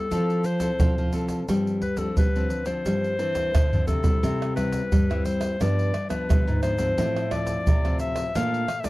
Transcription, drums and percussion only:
0.12 pandeiro medium
0.12 shaker medium
0.12 surdo medium
0.30 pandeiro soft
0.30 shaker soft
0.44 pandeiro medium
0.44 shaker medium
0.60 pandeiro medium
0.60 shaker medium
0.60 surdo soft
0.80 pandeiro medium
0.80 shaker medium
0.80 surdo loud
0.98 pandeiro soft
0.98 shaker soft
1.13 pandeiro medium
1.13 shaker medium
1.13 surdo soft
1.28 pandeiro medium
1.28 shaker medium
1.28 surdo soft
1.48 pandeiro medium
1.48 shaker medium
1.48 surdo medium
1.67 pandeiro soft
1.67 shaker soft
1.82 pandeiro medium
1.82 surdo soft
1.97 pandeiro medium
1.97 shaker medium
1.97 surdo soft
2.17 pandeiro medium
2.17 shaker medium
2.17 surdo loud
2.36 pandeiro soft
2.36 shaker soft
2.50 pandeiro medium
2.50 shaker medium
2.66 pandeiro medium
2.66 shaker medium
2.86 pandeiro medium
2.86 shaker medium
2.86 surdo medium
3.04 pandeiro soft
3.04 shaker soft
3.19 pandeiro medium
3.35 pandeiro medium
3.35 shaker medium
3.35 surdo soft
3.55 pandeiro medium
3.55 tamborim loud
3.55 shaker medium
3.55 surdo loud
3.73 surdo medium
3.73 pandeiro soft
3.73 shaker soft
3.88 pandeiro medium
3.88 shaker medium
3.88 surdo medium
4.04 pandeiro medium
4.04 shaker medium
4.04 surdo medium
4.24 pandeiro medium
4.24 shaker medium
4.24 surdo medium
4.42 pandeiro soft
4.42 tamborim medium
4.42 shaker soft
4.57 pandeiro medium
4.57 tamborim medium
4.57 shaker medium
4.57 surdo soft
4.73 pandeiro medium
4.73 shaker medium
4.73 surdo soft
4.92 pandeiro medium
4.92 shaker medium
4.92 surdo loud
5.11 pandeiro soft
5.11 tamborim medium
5.11 shaker soft
5.26 pandeiro medium
5.26 shaker medium
5.41 pandeiro medium
5.41 tamborim medium
5.41 shaker medium
5.61 pandeiro medium
5.61 tamborim medium
5.61 shaker medium
5.61 surdo medium
5.79 pandeiro soft
5.79 shaker soft
5.94 pandeiro medium
5.94 tamborim medium
6.10 pandeiro medium
6.10 tamborim medium
6.10 shaker medium
6.10 surdo soft
6.30 pandeiro medium
6.30 tamborim medium
6.30 shaker medium
6.30 surdo loud
6.48 pandeiro soft
6.48 shaker soft
6.63 pandeiro medium
6.63 tamborim medium
6.63 shaker medium
6.78 pandeiro medium
6.78 shaker medium
6.78 surdo soft
6.98 pandeiro medium
6.98 shaker medium
6.98 surdo medium
7.16 pandeiro soft
7.16 tamborim medium
7.16 shaker soft
7.31 pandeiro medium
7.31 tamborim medium
7.31 surdo soft
7.47 pandeiro medium
7.47 shaker medium
7.47 surdo soft
7.67 pandeiro medium
7.67 shaker medium
7.67 surdo loud
7.85 pandeiro soft
7.85 tamborim medium
7.85 shaker soft
7.99 pandeiro medium
7.99 shaker medium
8.16 pandeiro medium
8.16 tamborim medium
8.16 shaker medium
8.35 pandeiro medium
8.35 tamborim medium
8.35 shaker medium
8.35 surdo medium
8.54 pandeiro soft
8.54 shaker soft
8.68 pandeiro medium
8.68 tamborim medium
8.68 shaker medium
8.84 pandeiro medium
8.84 tamborim medium
8.84 shaker medium
8.84 surdo soft

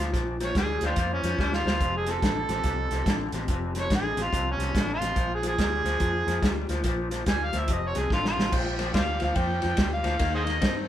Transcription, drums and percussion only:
0.01 snare soft
0.14 kick medium
0.14 snare soft
0.14 closed hi-hat medium
0.40 snare soft
0.40 closed hi-hat medium
0.55 kick medium
0.55 snare loud
0.55 closed hi-hat medium
0.81 snare soft
0.81 closed hi-hat medium
0.96 kick medium
0.96 snare soft
0.96 closed hi-hat medium
1.24 snare soft
1.24 closed hi-hat medium
1.39 kick medium
1.39 snare medium
1.53 snare medium
1.67 snare medium
1.81 kick medium
1.81 closed hi-hat medium
2.07 snare soft
2.07 closed hi-hat medium
2.22 kick medium
2.22 snare loud
2.22 closed hi-hat medium
2.49 snare soft
2.49 closed hi-hat medium
2.64 kick medium
2.64 snare soft
2.64 closed hi-hat medium
2.91 snare soft
2.91 closed hi-hat medium
3.06 kick medium
3.06 snare loud
3.06 closed hi-hat medium
3.32 snare soft
3.32 closed hi-hat medium
3.48 kick medium
3.48 closed hi-hat medium
3.75 snare soft
3.75 closed hi-hat medium
3.90 kick medium
3.90 snare loud
3.90 closed hi-hat medium
4.17 snare soft
4.17 closed hi-hat medium
4.33 kick medium
4.33 closed hi-hat medium
4.60 snare soft
4.60 closed hi-hat medium
4.75 kick medium
4.75 snare loud
4.75 closed hi-hat medium
5.02 snare soft
5.02 closed hi-hat medium
5.16 kick medium
5.16 closed hi-hat medium
5.43 snare soft
5.43 closed hi-hat medium
5.58 kick medium
5.58 snare medium
5.58 closed hi-hat medium
5.86 snare soft
5.86 closed hi-hat soft
6.00 kick medium
6.00 closed hi-hat medium
6.28 snare soft
6.28 closed hi-hat medium
6.42 kick medium
6.42 snare loud
6.42 closed hi-hat medium
6.69 snare soft
6.69 closed hi-hat medium
6.84 kick medium
6.84 snare soft
6.84 closed hi-hat medium
7.11 snare soft
7.11 closed hi-hat medium
7.26 kick medium
7.26 snare medium
7.26 closed hi-hat medium
7.53 snare soft
7.53 closed hi-hat medium
7.68 kick medium
7.68 closed hi-hat medium
7.95 snare soft
7.95 closed hi-hat medium
8.10 kick medium
8.10 snare medium
8.25 snare medium
8.40 snare medium
8.52 kick medium
8.52 crash medium
8.79 snare soft
8.79 ride medium
8.94 kick medium
8.94 snare loud
8.94 ride medium
9.20 snare soft
9.20 ride medium
9.36 kick medium
9.36 ride medium
9.62 snare soft
9.62 ride medium
9.77 kick medium
9.77 snare loud
9.77 ride medium
10.04 snare soft
10.04 ride medium
10.19 kick medium
10.19 snare soft
10.19 ride medium
10.47 snare soft
10.47 ride medium
10.62 kick medium
10.62 snare loud
10.62 ride medium

